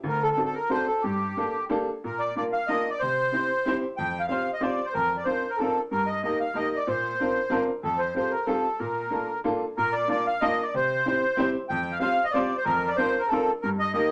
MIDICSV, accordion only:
0, 0, Header, 1, 2, 480
1, 0, Start_track
1, 0, Key_signature, -2, "major"
1, 0, Tempo, 331492
1, 54, Time_signature, 3, 2, 24, 8
1, 3414, Tempo, 323799
1, 9654, Tempo, 320684
1, 20952, End_track
2, 0, Start_track
2, 0, Title_t, "Accordion"
2, 0, Program_c, 0, 21
2, 112, Note_on_c, 0, 70, 83
2, 329, Note_off_c, 0, 70, 0
2, 333, Note_on_c, 0, 69, 99
2, 432, Note_off_c, 0, 69, 0
2, 454, Note_on_c, 0, 69, 76
2, 611, Note_off_c, 0, 69, 0
2, 656, Note_on_c, 0, 69, 89
2, 780, Note_on_c, 0, 70, 86
2, 797, Note_off_c, 0, 69, 0
2, 1017, Note_off_c, 0, 70, 0
2, 1022, Note_on_c, 0, 72, 98
2, 1257, Note_on_c, 0, 69, 75
2, 1259, Note_off_c, 0, 72, 0
2, 1484, Note_on_c, 0, 67, 78
2, 1494, Note_off_c, 0, 69, 0
2, 2392, Note_off_c, 0, 67, 0
2, 2970, Note_on_c, 0, 70, 68
2, 3174, Note_on_c, 0, 74, 86
2, 3200, Note_off_c, 0, 70, 0
2, 3395, Note_off_c, 0, 74, 0
2, 3433, Note_on_c, 0, 74, 85
2, 3538, Note_off_c, 0, 74, 0
2, 3666, Note_on_c, 0, 77, 88
2, 3878, Note_on_c, 0, 75, 88
2, 3908, Note_off_c, 0, 77, 0
2, 4215, Note_on_c, 0, 74, 73
2, 4217, Note_off_c, 0, 75, 0
2, 4360, Note_on_c, 0, 72, 99
2, 4381, Note_off_c, 0, 74, 0
2, 5505, Note_off_c, 0, 72, 0
2, 5805, Note_on_c, 0, 79, 95
2, 6142, Note_on_c, 0, 77, 96
2, 6176, Note_off_c, 0, 79, 0
2, 6236, Note_off_c, 0, 77, 0
2, 6259, Note_on_c, 0, 77, 99
2, 6604, Note_off_c, 0, 77, 0
2, 6634, Note_on_c, 0, 75, 79
2, 6757, Note_on_c, 0, 74, 86
2, 6761, Note_off_c, 0, 75, 0
2, 7117, Note_on_c, 0, 72, 86
2, 7129, Note_off_c, 0, 74, 0
2, 7240, Note_on_c, 0, 70, 91
2, 7242, Note_off_c, 0, 72, 0
2, 7576, Note_off_c, 0, 70, 0
2, 7586, Note_on_c, 0, 74, 66
2, 7701, Note_on_c, 0, 72, 92
2, 7717, Note_off_c, 0, 74, 0
2, 8069, Note_on_c, 0, 70, 61
2, 8085, Note_off_c, 0, 72, 0
2, 8178, Note_on_c, 0, 69, 80
2, 8200, Note_off_c, 0, 70, 0
2, 8529, Note_off_c, 0, 69, 0
2, 8685, Note_on_c, 0, 70, 81
2, 8909, Note_on_c, 0, 75, 85
2, 8939, Note_off_c, 0, 70, 0
2, 9139, Note_off_c, 0, 75, 0
2, 9162, Note_on_c, 0, 75, 86
2, 9392, Note_off_c, 0, 75, 0
2, 9409, Note_on_c, 0, 77, 84
2, 9645, Note_on_c, 0, 75, 89
2, 9658, Note_off_c, 0, 77, 0
2, 9944, Note_on_c, 0, 74, 77
2, 9981, Note_off_c, 0, 75, 0
2, 10117, Note_on_c, 0, 72, 89
2, 10125, Note_off_c, 0, 74, 0
2, 11257, Note_off_c, 0, 72, 0
2, 11555, Note_on_c, 0, 69, 87
2, 11772, Note_on_c, 0, 72, 83
2, 11803, Note_off_c, 0, 69, 0
2, 12014, Note_off_c, 0, 72, 0
2, 12036, Note_on_c, 0, 72, 80
2, 12260, Note_on_c, 0, 70, 71
2, 12283, Note_off_c, 0, 72, 0
2, 12485, Note_on_c, 0, 69, 68
2, 12513, Note_off_c, 0, 70, 0
2, 12977, Note_on_c, 0, 70, 66
2, 12995, Note_off_c, 0, 69, 0
2, 13896, Note_off_c, 0, 70, 0
2, 14452, Note_on_c, 0, 70, 103
2, 14678, Note_on_c, 0, 74, 99
2, 14701, Note_off_c, 0, 70, 0
2, 14920, Note_off_c, 0, 74, 0
2, 14942, Note_on_c, 0, 74, 104
2, 15190, Note_off_c, 0, 74, 0
2, 15193, Note_on_c, 0, 77, 93
2, 15413, Note_on_c, 0, 75, 107
2, 15435, Note_off_c, 0, 77, 0
2, 15731, Note_on_c, 0, 74, 78
2, 15750, Note_off_c, 0, 75, 0
2, 15902, Note_off_c, 0, 74, 0
2, 15917, Note_on_c, 0, 72, 98
2, 17040, Note_off_c, 0, 72, 0
2, 17323, Note_on_c, 0, 79, 91
2, 17669, Note_on_c, 0, 77, 86
2, 17693, Note_off_c, 0, 79, 0
2, 17762, Note_off_c, 0, 77, 0
2, 17784, Note_on_c, 0, 77, 116
2, 18149, Note_on_c, 0, 75, 88
2, 18161, Note_off_c, 0, 77, 0
2, 18257, Note_on_c, 0, 74, 92
2, 18276, Note_off_c, 0, 75, 0
2, 18632, Note_on_c, 0, 72, 89
2, 18636, Note_off_c, 0, 74, 0
2, 18756, Note_off_c, 0, 72, 0
2, 18756, Note_on_c, 0, 70, 99
2, 19107, Note_on_c, 0, 74, 90
2, 19126, Note_off_c, 0, 70, 0
2, 19229, Note_on_c, 0, 72, 110
2, 19234, Note_off_c, 0, 74, 0
2, 19573, Note_on_c, 0, 70, 70
2, 19607, Note_off_c, 0, 72, 0
2, 19704, Note_on_c, 0, 69, 92
2, 19711, Note_off_c, 0, 70, 0
2, 20053, Note_off_c, 0, 69, 0
2, 20216, Note_on_c, 0, 70, 85
2, 20325, Note_off_c, 0, 70, 0
2, 20470, Note_on_c, 0, 75, 108
2, 20659, Note_off_c, 0, 75, 0
2, 20682, Note_on_c, 0, 75, 94
2, 20938, Note_off_c, 0, 75, 0
2, 20952, End_track
0, 0, End_of_file